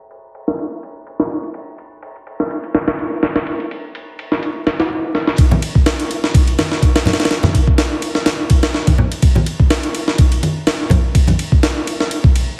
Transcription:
0.11 ride
0.35 ride
0.48 snare
0.59 ride
0.83 ride
1.07 ride
1.20 snare
1.30 ride
1.43 ride
1.54 ride
1.78 ride
2.02 ride
2.16 ride
2.27 ride
2.40 snare
2.51 ride
2.63 ride
2.75 snare, ride
2.88 snare, ride
2.99 ride
3.23 snare, ride
3.36 snare, ride
3.47 ride
3.60 ride
3.71 ride
3.95 ride
4.19 ride
4.32 snare
4.43 ride
4.67 snare, ride
4.80 snare, ride
5.15 snare
5.27 snare
5.38 kick, ride
5.51 high conga, low conga
5.62 ride
5.75 kick
5.86 snare, ride
6.00 ride
6.11 ride
6.24 snare
6.34 kick, ride
6.47 ride
6.58 snare, ride, high conga
6.72 snare
6.82 kick, ride
6.96 snare, ride
7.05 snare, ride, low conga
7.13 snare, ride
7.20 snare, ride
7.25 snare, ride
7.31 snare, ride
7.43 snare, high conga, low conga
7.54 kick, ride
7.67 kick
7.78 snare, ride
8.02 ride
8.15 snare
8.26 snare, ride
8.50 kick, ride
8.63 snare, ride
8.74 snare
8.87 kick, ride, high conga
8.98 low conga
9.12 ride
9.22 kick, ride
9.35 high conga, low conga
9.46 ride
9.60 kick
9.70 snare, ride
9.83 ride
9.95 ride
10.08 snare
10.18 kick, ride
10.32 ride
10.43 ride, high conga
10.67 snare, ride
10.90 kick, ride, low conga
11.15 kick, ride
11.27 ride, high conga, low conga
11.39 ride
11.52 kick
11.63 snare, ride
11.87 ride
12.00 snare
12.11 ride
12.24 kick
12.36 ride

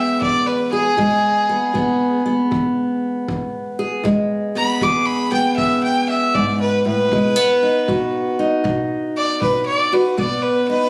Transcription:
Already playing: E2 E3 G#3 B3 G#4 E5
0.21 E2 D5, kick
0.46 B4
0.72 G#4
0.97 E2 G#3, kick
1.49 B3
1.74 E2 B3, kick
2.26 B3
2.51 E2, kick
3.28 E2, kick
3.79 G#4
4.04 E2 G#3, kick
4.55 B3 B5
4.81 E2 G#4 D6, kick
5.06 B5
5.32 B3 G5
5.56 E2 E5, kick
5.84 G5
6.09 E5
6.35 G#2 D5, kick
6.61 B4
6.86 A2 B4
7.12 B2 G#3, kick
7.36 B3
7.63 D#4
7.88 B2 F#4, kick
8.39 D#4
8.64 B2, kick
9.17 D5
9.42 B2 B4, kick
9.66 D5
9.93 F#4 B4
10.18 B2 B3 D5, kick
10.42 B4
10.68 D#4 B4

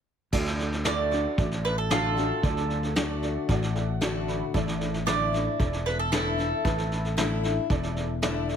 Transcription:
0.32 D2 D3 F#4 A4 D5, kick, snare, crash
0.46 snare
0.59 snare
0.72 snare
0.84 D3 A3 D4 F#4 A4 D5 C#6, snare, hi-hat pedal
1.11 D4 F#4, snare
1.38 A1 A2 F#4 A4 D5, kick, snare
1.51 snare
1.64 B4, snare
1.78 A4
1.90 D3 F#3 A3 D4 F4 F#4 A4 D5, snare, hi-hat pedal
2.17 D4 F#4, snare
2.43 D2 D3 F#3 A4 D5, kick, snare
2.57 snare
2.70 snare
2.83 snare
2.96 D3 A3 D4 F#4 A4 D5, snare, hi-hat pedal
3.22 D5, snare
3.49 A1 A2 F#4 A4 D5 F#5, kick, snare
3.62 snare
3.75 F#5, snare
4.01 D3 A3 D4 F#4 A4 D5 A5, snare, hi-hat pedal
4.28 B5, snare
4.54 A1 A2 E4 A4 D5, kick, snare
4.68 snare
4.81 snare
4.94 snare
5.06 D3 A3 D4 E4 A4 D5 C#6, snare, hi-hat pedal
5.33 D4 E4, snare
5.59 E1 E2 E4 A4 D5, kick, snare
5.73 snare
5.86 B4, snare
5.99 A4
6.12 D3 A3 D4 E4 A4 B4, snare, hi-hat pedal
6.38 D4 E4, snare
6.64 A1 A2 E4 A4 B4, kick, snare
6.78 snare
6.91 snare
7.04 snare
7.17 D3 A3 D4 E4 A4 E5, snare, hi-hat pedal
7.43 D4 E4, snare
7.70 E1 E2 E4 A4 D5, kick, snare
7.83 snare
7.96 snare
8.22 D3 A3 D4 E4 A4 D5, snare, hi-hat pedal
8.49 D4 E4, snare

